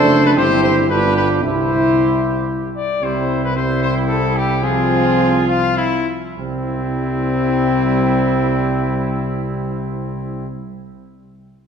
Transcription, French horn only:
0, 0, Header, 1, 2, 480
1, 0, Start_track
1, 0, Key_signature, 0, "major"
1, 0, Tempo, 529568
1, 1290, Time_signature, 3, 2, 24, 8
1, 3222, Tempo, 546946
1, 4662, Tempo, 578035
1, 5142, Tempo, 617920
1, 9723, End_track
2, 0, Start_track
2, 0, Title_t, "French horn"
2, 0, Program_c, 0, 60
2, 0, Note_on_c, 0, 62, 106
2, 331, Note_on_c, 0, 64, 101
2, 344, Note_off_c, 0, 62, 0
2, 804, Note_on_c, 0, 65, 86
2, 817, Note_off_c, 0, 64, 0
2, 1290, Note_on_c, 0, 64, 97
2, 1304, Note_off_c, 0, 65, 0
2, 2498, Note_off_c, 0, 64, 0
2, 2745, Note_on_c, 0, 60, 88
2, 3191, Note_off_c, 0, 60, 0
2, 3229, Note_on_c, 0, 60, 84
2, 4159, Note_off_c, 0, 60, 0
2, 4176, Note_on_c, 0, 60, 109
2, 5357, Note_off_c, 0, 60, 0
2, 5617, Note_on_c, 0, 60, 101
2, 8793, Note_off_c, 0, 60, 0
2, 9723, End_track
0, 0, End_of_file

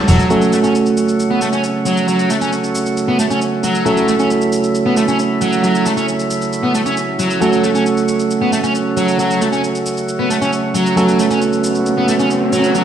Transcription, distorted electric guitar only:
0, 0, Header, 1, 2, 480
1, 0, Start_track
1, 0, Key_signature, 3, "minor"
1, 0, Tempo, 444444
1, 328, Time_signature, 4, 2, 24, 8
1, 13868, End_track
2, 0, Start_track
2, 0, Title_t, "Distorted electric guitar"
2, 0, Program_c, 0, 30
2, 87, Note_on_c, 0, 54, 79
2, 316, Note_off_c, 0, 54, 0
2, 329, Note_on_c, 0, 54, 76
2, 557, Note_off_c, 0, 54, 0
2, 569, Note_on_c, 0, 57, 68
2, 625, Note_off_c, 0, 57, 0
2, 688, Note_on_c, 0, 61, 70
2, 783, Note_off_c, 0, 61, 0
2, 1410, Note_on_c, 0, 59, 98
2, 1503, Note_off_c, 0, 59, 0
2, 1529, Note_on_c, 0, 57, 75
2, 1586, Note_off_c, 0, 57, 0
2, 1649, Note_on_c, 0, 61, 73
2, 1743, Note_off_c, 0, 61, 0
2, 2010, Note_on_c, 0, 54, 73
2, 2237, Note_off_c, 0, 54, 0
2, 2250, Note_on_c, 0, 54, 71
2, 2478, Note_off_c, 0, 54, 0
2, 2490, Note_on_c, 0, 57, 69
2, 2546, Note_off_c, 0, 57, 0
2, 2610, Note_on_c, 0, 61, 70
2, 2703, Note_off_c, 0, 61, 0
2, 3329, Note_on_c, 0, 59, 97
2, 3423, Note_off_c, 0, 59, 0
2, 3449, Note_on_c, 0, 57, 70
2, 3506, Note_off_c, 0, 57, 0
2, 3570, Note_on_c, 0, 61, 73
2, 3663, Note_off_c, 0, 61, 0
2, 3929, Note_on_c, 0, 54, 75
2, 4157, Note_off_c, 0, 54, 0
2, 4170, Note_on_c, 0, 54, 72
2, 4398, Note_off_c, 0, 54, 0
2, 4409, Note_on_c, 0, 57, 68
2, 4465, Note_off_c, 0, 57, 0
2, 4529, Note_on_c, 0, 61, 66
2, 4623, Note_off_c, 0, 61, 0
2, 5247, Note_on_c, 0, 59, 100
2, 5342, Note_off_c, 0, 59, 0
2, 5367, Note_on_c, 0, 57, 76
2, 5425, Note_off_c, 0, 57, 0
2, 5488, Note_on_c, 0, 61, 74
2, 5583, Note_off_c, 0, 61, 0
2, 5848, Note_on_c, 0, 54, 77
2, 6077, Note_off_c, 0, 54, 0
2, 6089, Note_on_c, 0, 54, 75
2, 6317, Note_off_c, 0, 54, 0
2, 6329, Note_on_c, 0, 57, 68
2, 6386, Note_off_c, 0, 57, 0
2, 6448, Note_on_c, 0, 61, 70
2, 6542, Note_off_c, 0, 61, 0
2, 7168, Note_on_c, 0, 59, 94
2, 7263, Note_off_c, 0, 59, 0
2, 7289, Note_on_c, 0, 57, 72
2, 7346, Note_off_c, 0, 57, 0
2, 7409, Note_on_c, 0, 61, 74
2, 7503, Note_off_c, 0, 61, 0
2, 7769, Note_on_c, 0, 54, 73
2, 7997, Note_off_c, 0, 54, 0
2, 8010, Note_on_c, 0, 54, 80
2, 8237, Note_off_c, 0, 54, 0
2, 8249, Note_on_c, 0, 57, 66
2, 8306, Note_off_c, 0, 57, 0
2, 8368, Note_on_c, 0, 61, 68
2, 8463, Note_off_c, 0, 61, 0
2, 9089, Note_on_c, 0, 59, 92
2, 9183, Note_off_c, 0, 59, 0
2, 9208, Note_on_c, 0, 57, 75
2, 9265, Note_off_c, 0, 57, 0
2, 9328, Note_on_c, 0, 61, 75
2, 9423, Note_off_c, 0, 61, 0
2, 9689, Note_on_c, 0, 54, 74
2, 9917, Note_off_c, 0, 54, 0
2, 9928, Note_on_c, 0, 54, 72
2, 10157, Note_off_c, 0, 54, 0
2, 10168, Note_on_c, 0, 57, 72
2, 10225, Note_off_c, 0, 57, 0
2, 10289, Note_on_c, 0, 61, 71
2, 10383, Note_off_c, 0, 61, 0
2, 11007, Note_on_c, 0, 59, 101
2, 11102, Note_off_c, 0, 59, 0
2, 11127, Note_on_c, 0, 57, 73
2, 11184, Note_off_c, 0, 57, 0
2, 11249, Note_on_c, 0, 61, 72
2, 11343, Note_off_c, 0, 61, 0
2, 11607, Note_on_c, 0, 54, 76
2, 11836, Note_off_c, 0, 54, 0
2, 11847, Note_on_c, 0, 54, 75
2, 12076, Note_off_c, 0, 54, 0
2, 12091, Note_on_c, 0, 57, 69
2, 12146, Note_off_c, 0, 57, 0
2, 12211, Note_on_c, 0, 61, 70
2, 12304, Note_off_c, 0, 61, 0
2, 12932, Note_on_c, 0, 59, 96
2, 13025, Note_off_c, 0, 59, 0
2, 13052, Note_on_c, 0, 57, 74
2, 13107, Note_off_c, 0, 57, 0
2, 13169, Note_on_c, 0, 61, 70
2, 13263, Note_off_c, 0, 61, 0
2, 13531, Note_on_c, 0, 54, 75
2, 13758, Note_off_c, 0, 54, 0
2, 13769, Note_on_c, 0, 54, 78
2, 13868, Note_off_c, 0, 54, 0
2, 13868, End_track
0, 0, End_of_file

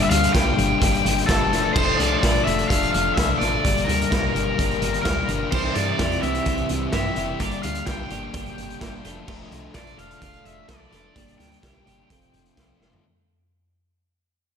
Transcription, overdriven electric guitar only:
0, 0, Header, 1, 2, 480
1, 0, Start_track
1, 0, Tempo, 470219
1, 1795, Time_signature, 4, 2, 24, 8
1, 14863, End_track
2, 0, Start_track
2, 0, Title_t, "Overdriven electric guitar"
2, 0, Program_c, 0, 29
2, 34, Note_on_c, 0, 76, 77
2, 98, Note_off_c, 0, 76, 0
2, 102, Note_on_c, 0, 77, 112
2, 329, Note_off_c, 0, 77, 0
2, 340, Note_on_c, 0, 79, 102
2, 1268, Note_off_c, 0, 79, 0
2, 1297, Note_on_c, 0, 69, 92
2, 1766, Note_off_c, 0, 69, 0
2, 1770, Note_on_c, 0, 72, 110
2, 2016, Note_on_c, 0, 74, 105
2, 2030, Note_off_c, 0, 72, 0
2, 2492, Note_off_c, 0, 74, 0
2, 2496, Note_on_c, 0, 76, 91
2, 2737, Note_off_c, 0, 76, 0
2, 2741, Note_on_c, 0, 77, 111
2, 2965, Note_off_c, 0, 77, 0
2, 2977, Note_on_c, 0, 77, 109
2, 3208, Note_off_c, 0, 77, 0
2, 3212, Note_on_c, 0, 76, 88
2, 3453, Note_off_c, 0, 76, 0
2, 3457, Note_on_c, 0, 74, 106
2, 3923, Note_on_c, 0, 70, 93
2, 3963, Note_off_c, 0, 74, 0
2, 5100, Note_off_c, 0, 70, 0
2, 5125, Note_on_c, 0, 70, 83
2, 5587, Note_off_c, 0, 70, 0
2, 5628, Note_on_c, 0, 72, 93
2, 5856, Note_off_c, 0, 72, 0
2, 5862, Note_on_c, 0, 74, 96
2, 6316, Note_off_c, 0, 74, 0
2, 6352, Note_on_c, 0, 76, 80
2, 6801, Note_off_c, 0, 76, 0
2, 7083, Note_on_c, 0, 76, 81
2, 7526, Note_off_c, 0, 76, 0
2, 7558, Note_on_c, 0, 74, 92
2, 7785, Note_off_c, 0, 74, 0
2, 7789, Note_on_c, 0, 77, 87
2, 8026, Note_off_c, 0, 77, 0
2, 8031, Note_on_c, 0, 79, 87
2, 9191, Note_off_c, 0, 79, 0
2, 9960, Note_on_c, 0, 74, 80
2, 10197, Note_off_c, 0, 74, 0
2, 10201, Note_on_c, 0, 77, 92
2, 10423, Note_off_c, 0, 77, 0
2, 10436, Note_on_c, 0, 77, 115
2, 10658, Note_off_c, 0, 77, 0
2, 10678, Note_on_c, 0, 76, 84
2, 10914, Note_off_c, 0, 76, 0
2, 10918, Note_on_c, 0, 74, 98
2, 11128, Note_off_c, 0, 74, 0
2, 11140, Note_on_c, 0, 74, 94
2, 11592, Note_off_c, 0, 74, 0
2, 11620, Note_on_c, 0, 79, 111
2, 13025, Note_off_c, 0, 79, 0
2, 14863, End_track
0, 0, End_of_file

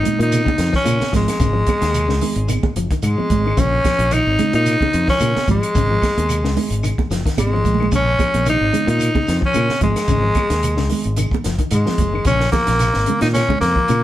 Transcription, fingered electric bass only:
0, 0, Header, 1, 3, 480
1, 0, Start_track
1, 0, Key_signature, -5, "minor"
1, 0, Tempo, 542495
1, 1248, Time_signature, 4, 2, 24, 8
1, 12418, End_track
2, 0, Start_track
2, 0, Title_t, "Fingered electric bass"
2, 0, Program_c, 0, 33
2, 172, Note_on_c, 0, 46, 86
2, 356, Note_off_c, 0, 46, 0
2, 517, Note_on_c, 0, 41, 92
2, 619, Note_off_c, 0, 41, 0
2, 755, Note_on_c, 0, 46, 88
2, 858, Note_off_c, 0, 46, 0
2, 1006, Note_on_c, 0, 32, 82
2, 1105, Note_off_c, 0, 32, 0
2, 1241, Note_on_c, 0, 32, 101
2, 1426, Note_off_c, 0, 32, 0
2, 1610, Note_on_c, 0, 39, 83
2, 1848, Note_off_c, 0, 39, 0
2, 1848, Note_on_c, 0, 37, 90
2, 1936, Note_off_c, 0, 37, 0
2, 2089, Note_on_c, 0, 32, 76
2, 2275, Note_off_c, 0, 32, 0
2, 2443, Note_on_c, 0, 30, 73
2, 2544, Note_off_c, 0, 30, 0
2, 2679, Note_on_c, 0, 44, 85
2, 2782, Note_off_c, 0, 44, 0
2, 2924, Note_on_c, 0, 32, 80
2, 3109, Note_off_c, 0, 32, 0
2, 3160, Note_on_c, 0, 34, 94
2, 3346, Note_off_c, 0, 34, 0
2, 3528, Note_on_c, 0, 34, 87
2, 3714, Note_off_c, 0, 34, 0
2, 3777, Note_on_c, 0, 32, 82
2, 3862, Note_off_c, 0, 32, 0
2, 4014, Note_on_c, 0, 46, 86
2, 4199, Note_off_c, 0, 46, 0
2, 4371, Note_on_c, 0, 41, 95
2, 4469, Note_off_c, 0, 41, 0
2, 4606, Note_on_c, 0, 46, 91
2, 4706, Note_off_c, 0, 46, 0
2, 4845, Note_on_c, 0, 32, 91
2, 4946, Note_off_c, 0, 32, 0
2, 5092, Note_on_c, 0, 32, 98
2, 5273, Note_off_c, 0, 32, 0
2, 5464, Note_on_c, 0, 39, 83
2, 5701, Note_off_c, 0, 39, 0
2, 5701, Note_on_c, 0, 37, 82
2, 5784, Note_off_c, 0, 37, 0
2, 5933, Note_on_c, 0, 32, 81
2, 6118, Note_off_c, 0, 32, 0
2, 6287, Note_on_c, 0, 30, 75
2, 6387, Note_off_c, 0, 30, 0
2, 6524, Note_on_c, 0, 32, 78
2, 6743, Note_off_c, 0, 32, 0
2, 6773, Note_on_c, 0, 34, 69
2, 6987, Note_off_c, 0, 34, 0
2, 7010, Note_on_c, 0, 34, 93
2, 7192, Note_off_c, 0, 34, 0
2, 7383, Note_on_c, 0, 34, 77
2, 7564, Note_off_c, 0, 34, 0
2, 7618, Note_on_c, 0, 32, 81
2, 7702, Note_off_c, 0, 32, 0
2, 7852, Note_on_c, 0, 46, 90
2, 8037, Note_off_c, 0, 46, 0
2, 8214, Note_on_c, 0, 41, 90
2, 8311, Note_off_c, 0, 41, 0
2, 8457, Note_on_c, 0, 46, 88
2, 8552, Note_off_c, 0, 46, 0
2, 8684, Note_on_c, 0, 32, 91
2, 8784, Note_off_c, 0, 32, 0
2, 8924, Note_on_c, 0, 32, 110
2, 9108, Note_off_c, 0, 32, 0
2, 9293, Note_on_c, 0, 39, 91
2, 9538, Note_off_c, 0, 39, 0
2, 9538, Note_on_c, 0, 37, 86
2, 9622, Note_off_c, 0, 37, 0
2, 9781, Note_on_c, 0, 32, 82
2, 9962, Note_off_c, 0, 32, 0
2, 10136, Note_on_c, 0, 30, 79
2, 10231, Note_off_c, 0, 30, 0
2, 10365, Note_on_c, 0, 44, 90
2, 10465, Note_off_c, 0, 44, 0
2, 10603, Note_on_c, 0, 30, 78
2, 10787, Note_off_c, 0, 30, 0
2, 10842, Note_on_c, 0, 34, 92
2, 11026, Note_off_c, 0, 34, 0
2, 11218, Note_on_c, 0, 34, 86
2, 11400, Note_off_c, 0, 34, 0
2, 11455, Note_on_c, 0, 32, 80
2, 11540, Note_off_c, 0, 32, 0
2, 11695, Note_on_c, 0, 46, 90
2, 11878, Note_off_c, 0, 46, 0
2, 12046, Note_on_c, 0, 41, 93
2, 12146, Note_off_c, 0, 41, 0
2, 12294, Note_on_c, 0, 46, 89
2, 12390, Note_off_c, 0, 46, 0
2, 12418, End_track
3, 0, Start_track
3, 0, Title_t, "Muted fingered electric bass strokes"
3, 415, Note_on_c, 9, 29, 33
3, 504, Note_off_c, 9, 29, 0
3, 884, Note_on_c, 9, 29, 31
3, 972, Note_off_c, 9, 29, 0
3, 2327, Note_on_c, 9, 29, 34
3, 2416, Note_off_c, 9, 29, 0
3, 4256, Note_on_c, 9, 29, 37
3, 4344, Note_off_c, 9, 29, 0
3, 4744, Note_on_c, 9, 29, 35
3, 4833, Note_off_c, 9, 29, 0
3, 4989, Note_on_c, 9, 29, 34
3, 5077, Note_off_c, 9, 29, 0
3, 8582, Note_on_c, 9, 29, 37
3, 8671, Note_off_c, 9, 29, 0
3, 10010, Note_on_c, 9, 29, 39
3, 10098, Note_off_c, 9, 29, 0
3, 12418, End_track
0, 0, End_of_file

